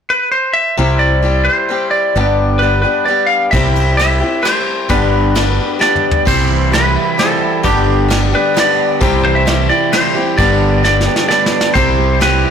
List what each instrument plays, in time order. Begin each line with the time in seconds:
0.10 electric slide guitar B4
0.32 electric slide guitar C5
0.53 electric slide guitar E5
0.77 fingered electric bass C2, steel-string acoustic guitar C3 G3 C4 E4 G4
0.99 electric slide guitar D5
1.22 steel-string acoustic guitar G3 C4 E4 G4
1.45 electric slide guitar C5
1.69 steel-string acoustic guitar G3 C4 E4 G4
1.91 electric slide guitar D5
2.15 fingered electric bass G1, steel-string acoustic guitar G2 D3 G3 B3 D4 G4
2.59 steel-string acoustic guitar G3 B3, electric slide guitar B4
2.63 steel-string acoustic guitar D4 G4
2.82 steel-string acoustic guitar B3 D4 G4, electric slide guitar B4
2.86 steel-string acoustic guitar G3
3.06 steel-string acoustic guitar G3 B3, electric slide guitar D5
3.10 steel-string acoustic guitar D4 G4
3.26 electric slide guitar F5
3.51 fingered electric bass C2, steel-string acoustic guitar C3 G3 C4 E4 G4, electric slide guitar E5, kick, ride
3.76 ride
3.97 steel-string acoustic guitar G3 C4 E4 G4, electric slide guitar E5, cross-stick, ride
4.20 steel-string acoustic guitar C4 E4 G4
4.42 steel-string acoustic guitar G3 C4 E4 G4, electric slide guitar C5, cross-stick, ride
4.89 fingered electric bass G1, steel-string acoustic guitar G2 D3 G3 B3 D4 G4, electric slide guitar B4, kick, ride
5.35 steel-string acoustic guitar G3 B3 D4 G4, snare, ride
5.79 steel-string acoustic guitar G3 B3 D4 G4, electric slide guitar D5, snare
5.96 mid tom
6.11 floor tom
6.25 fingered electric bass C2, steel-string acoustic guitar C3 G3 C4 E4 G4, electric slide guitar C5, kick, crash
6.50 clean electric guitar E3
6.72 clean electric guitar E3, steel-string acoustic guitar G3 C4 E4 G4, electric slide guitar B4, snare, ride
6.96 clean electric guitar E4
7.18 steel-string acoustic guitar G3 C4 E4 G4, electric slide guitar A4, snare, ride
7.42 clean electric guitar E4
7.63 fingered electric bass G1, steel-string acoustic guitar G2 D3 G3 B3 D4 G4, electric slide guitar G4, kick, ride
7.87 clean electric guitar D3
8.08 steel-string acoustic guitar G3 B3 D4 G4, snare, ride
8.32 steel-string acoustic guitar G3 B3 D4 G4, electric slide guitar B4
8.54 steel-string acoustic guitar G3 B3 D4 G4, snare, ride
8.60 electric slide guitar D5
8.78 clean electric guitar D4
9.01 fingered electric bass C2, steel-string acoustic guitar C3 G3 C4 E4 G4, kick, ride
9.24 clean electric guitar E3, electric slide guitar C5
9.35 electric slide guitar E5
9.46 clean electric guitar E3, steel-string acoustic guitar G3 C4 E4 G4, snare, ride
9.69 steel-string acoustic guitar C4 E4 G4, electric slide guitar D5
9.92 steel-string acoustic guitar G3 C4 E4 G4, electric slide guitar C5, snare, ride
10.15 steel-string acoustic guitar C4 E4 G4
10.38 fingered electric bass G1, steel-string acoustic guitar G2 D3 G3 B3 D4 G4, electric slide guitar D5, kick, ride
10.60 clean electric guitar D3
10.84 steel-string acoustic guitar G3 B3 D4 G4, electric slide guitar D5, snare
11.01 snare
11.05 steel-string acoustic guitar G3 B3 D4 G4
11.16 snare
11.28 steel-string acoustic guitar G3 B3 D4 G4, electric slide guitar D5, snare
11.46 snare
11.52 clean electric guitar D4
11.61 snare
11.74 fingered electric bass C2, steel-string acoustic guitar C3 G3 C4 E4 G4, electric slide guitar C5, kick, ride
11.98 clean electric guitar G3
12.20 steel-string acoustic guitar G3 C4 E4 G4, electric slide guitar B4, snare, ride
12.44 clean electric guitar E4